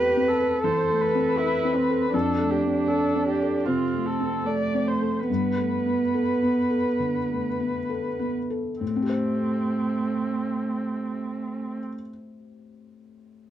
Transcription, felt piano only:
Already playing: E2 A3 C4 A4
0.16 C4
0.40 A4
0.64 E3
0.89 A3
1.15 C4
1.39 A4
1.64 C4
1.90 A4
2.13 F2
2.39 A3
2.66 C4
2.90 A4
3.15 C4
3.42 A4
3.67 C3
3.94 A3
4.20 C4
4.48 A4
4.74 C4
5.01 A4
5.30 G2
5.58 A3
5.86 B3
6.14 A4
6.42 B3
6.70 A4
7.00 D3
7.29 A3
7.60 B3
7.89 A4
8.19 B3
8.50 A4
8.81 A2
8.88 A3
8.96 C4
9.02 G4
9.09 C5

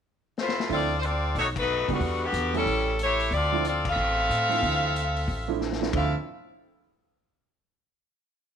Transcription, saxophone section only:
0.39 A3 E4 F4 C5
0.72 C4 F4 A4 D5
1.00 C5
1.04 C4 F4 A4 D5
1.38 A3 D#4 F#4 C#5
1.59 A3 D#4 F#4 B4
1.93 D3 G3 B3 F#4
2.24 D3 B3 F#4 G4
2.57 G3 C#4 E4 A4
3.02 A3 E4 G4 C#5
3.34 C4 F4 A4 D5
3.67 C4 F4 A4 D5
3.90 C4 A4 E5 F5
5.95 C4 E4 A4 F5

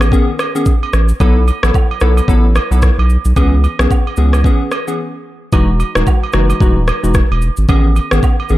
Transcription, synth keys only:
0.12 D#3 B3 C#4 G#4
0.55 D#3 B3 C#4 G#4
1.20 F#3 B3 E4 A4
1.63 F#3 B3 E4 A4
2.01 F#3 B3 E4 A4
2.28 F#3 B3 E4 A4
2.71 F#3 B3 E4 A4
3.36 E3 B3 C#4 G#4
3.79 E3 B3 C#4 G#4
4.17 E3 B3 C#4 G#4
4.45 E3 B3 C#4 G#4
4.87 E3 B3 C#4 G#4
5.53 E3 G#3 D#4 F#4
5.95 E3 G#3 D#4 F#4
6.33 E3 G#3 D#4 F#4
6.61 E3 G#3 D#4 F#4
7.03 E3 G#3 D#4 F#4
7.68 D#3 B3 C#4 G#4
8.11 D#3 B3 C#4 G#4
8.50 D#3 B3 C#4 G#4

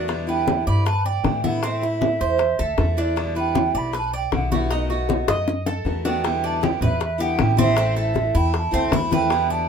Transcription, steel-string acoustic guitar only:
0.08 B2 D3 G3 B3 E4
0.27 D3 G3 B3 E4
0.85 muted steel-string acoustic guitar stroke
1.24 D3 G3 B3 E4
1.44 D3 G3 B3 E4
1.62 E3 A3 C4 E4
1.81 A3 C4 E4
2.38 muted steel-string acoustic guitar stroke
2.78 E3 A3 C4 E4
2.97 A3 C4 E4
3.16 B2 D3 G3 B3 E4
3.35 D3 G3 B3 E4
3.93 muted steel-string acoustic guitar stroke
4.32 D3 G3 B3 E4
4.51 D3 G3 B3 E4
4.71 B2 D#3 A3 B3 F#4
4.90 D#3 A3 B3 F#4
5.48 muted steel-string acoustic guitar stroke
5.85 D#3 A3 B3 F#4
6.05 D#3 A3 B3 F#4
6.24 B2 D3 G3 B3 E4
6.61 D3 G3 B3 E4
7.00 muted steel-string acoustic guitar stroke
7.18 D3 G3 B3 E4
7.39 D3 G3 B3 E4
7.57 D3 G3 B3 E4
7.76 E3 A3 C4 E4
8.14 E3 A3 C4 E4
8.54 muted steel-string acoustic guitar stroke
8.71 A3 C4 E4
8.92 E3 A3 C4 E4
9.11 A3 C4 E4
9.31 B2 D3 G3 B3 E4

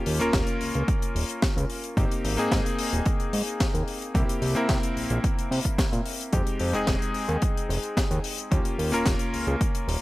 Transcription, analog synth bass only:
0.07 D#2
0.21 D#1
0.34 D#1
0.61 C#2
0.75 C#2
1.15 D#1
1.57 C#2
1.97 G#1
2.24 G#1
2.38 G#2
2.51 G#2
2.93 D#1
3.33 G#2
3.74 D#2
4.15 C2
4.42 C2
4.56 C3
4.69 C3
4.96 A#1
5.11 A#1
5.51 C3
5.93 A#2
6.33 F2
6.60 F2
6.74 F1
6.88 F1
7.29 D#2
7.69 F1
8.11 D#2
8.52 D#2
8.79 D#2
8.93 D#1
9.06 D#1
9.33 C#2
9.47 C#2
9.88 D#1

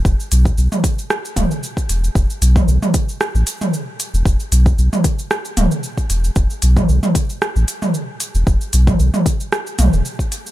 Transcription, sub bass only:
0.05 E1
0.32 B1
0.58 B1
1.37 D1
1.89 E1
2.15 E1
2.42 B1
2.68 B1
3.35 A1
4.14 E1
4.26 E1
4.52 B1
4.78 B1
5.57 D1
6.10 E1
6.36 E1
6.63 B1
6.89 B1
7.56 A1
8.35 E1
8.47 E1
8.73 B1
9.00 B1
9.79 B1
9.93 E1

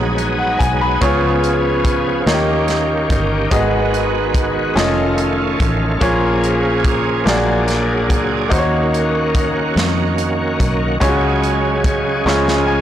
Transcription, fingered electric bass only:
Already playing: A#1
0.60 B1
1.02 C#2
2.26 D#2
3.10 G1
3.52 G#1
4.76 F1
5.60 A1
6.01 A#1
7.26 A#1
8.10 C#2
8.52 D#2
9.76 F2
10.60 B1
11.02 C#2
12.26 C#2

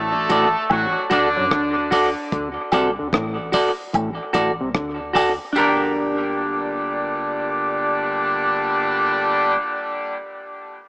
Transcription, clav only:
Already playing: A2
0.30 A2
0.70 A2
1.11 D3
1.37 F#3
1.52 D3
2.33 D3
2.73 C3
2.99 D3
3.13 A2
3.93 A2
4.34 A2
4.61 C3
4.75 D3

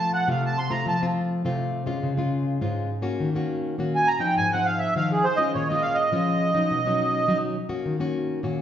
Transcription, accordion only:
Already playing: A5
0.13 F#5
0.30 F5
0.46 A5
0.58 C6
0.71 A#5
0.88 A5
3.95 G#5
4.07 A#5
4.20 G5
4.37 G#5
4.53 F#5
4.65 F5
4.79 E5
4.97 F5
5.12 G#4
5.24 C5
5.36 D#5
5.54 C#5
5.68 D#5
5.82 F5
5.94 D#5

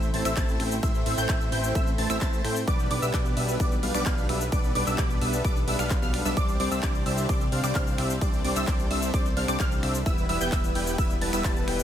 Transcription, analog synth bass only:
Already playing: A1
0.14 A1
0.25 A1
0.37 A1
0.60 A1
0.83 A1
1.06 A1
1.18 A1
1.29 A1
1.52 A1
1.75 A1
1.98 A1
2.10 A1
2.21 A1
2.45 A2
2.68 B1
2.91 B1
3.02 B1
3.14 B1
3.37 B1
3.60 B1
3.83 B1
3.95 B1
4.06 B1
4.29 B1
4.52 B1
4.75 B1
4.87 B1
4.98 B1
5.21 B1
5.45 B1
5.68 B1
5.79 B1
6.02 B1
6.25 B1
6.37 C2
6.60 C2
6.71 C2
6.83 C2
7.06 C2
7.29 C2
7.52 C2
7.64 C2
7.75 C2
7.98 C2
8.21 C2
8.45 C2
8.56 C2
8.68 C2
8.91 C2
9.14 C2
9.37 C2
9.48 C2
9.60 C2
9.83 C2
10.06 E1
10.29 E1
10.41 E1
10.52 E1
10.75 E1
10.98 E1
11.21 E1
11.33 E1
11.45 E1
11.68 E1

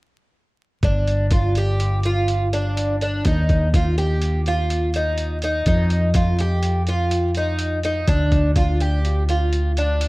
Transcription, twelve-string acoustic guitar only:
0.84 D4
1.32 F4
1.58 G4
2.06 F4
2.53 D4
3.02 D4
3.27 D#4
3.75 F4
3.98 G4
4.48 F4
4.96 D#4
5.44 D#4
5.67 D#4
6.15 F4
6.40 G4
6.89 F4
7.37 D#4
7.85 D#4
8.08 D4
8.57 F4
8.81 G4
9.29 F4
9.78 D4

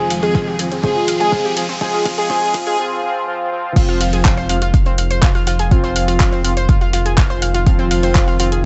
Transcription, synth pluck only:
0.10 F5
0.23 F4
0.35 F4
0.47 G4
0.59 G#4
0.72 C4
0.84 C5
0.96 F4
1.08 F5
1.20 F4
1.32 F4
1.45 G4
1.57 G#4
1.69 C4
1.81 C5
1.94 F4
2.06 F5
2.18 F4
2.30 C5
2.42 F4
2.54 F5
2.67 F4
3.76 F4 F5
3.89 F4 F5
4.01 F4 F5
4.13 G#4 G#5
4.25 F4 F5
4.37 C5 C6
4.50 F5 F6
4.62 F4 F5
4.74 F5 F6
4.86 C4 C5
4.98 F5 F6
5.11 C5 C6
5.23 F4 F5
5.35 F4 F5
5.47 F4 F5
5.59 G#4 G#5
5.71 F4 F5
5.84 C5 C6
5.96 F5 F6
6.08 F4 F5
6.20 F5 F6
6.32 C4 C5
6.44 F5 F6
6.57 C5 C6
6.69 F4 F5
6.81 F4 F5
6.93 F4 F5
7.06 G#4 G#5
7.18 F4 F5
7.30 C5 C6
7.42 F5 F6
7.54 F4 F5
7.66 F5 F6
7.79 C4 C5
7.91 F5 F6
8.03 C5 C6
8.15 F4 F5
8.28 F4 F5
8.40 F4 F5
8.52 G#4 G#5

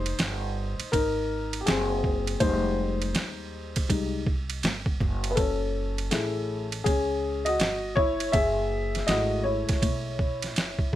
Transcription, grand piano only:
Already playing: D#4 C5
0.92 D#4 A#4
1.61 G4
1.66 C4 G#4
2.40 G3 G#3 D#4 C5
3.89 G3 G#3 D#4
5.31 B4
5.35 C#4 A4
6.11 A3 E4 G#4
6.84 C#4 G#4
7.45 F#4 D#5
7.96 E4 C#5
8.32 G#4 E5
9.07 G#3 A3 E4 F#4 D#5
9.44 E4 C#5
10.92 G#3

